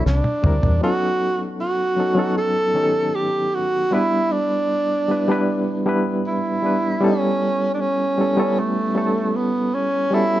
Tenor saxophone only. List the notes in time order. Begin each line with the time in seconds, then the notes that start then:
0.06 D4
0.83 F#4
1.60 F#4
2.38 A4
3.15 G4
3.54 F#4
3.93 E4
4.32 D4
6.27 E4
7.05 C#4
7.74 D4
7.81 C#4
8.59 A3
9.36 B3
9.74 C#4
10.14 E4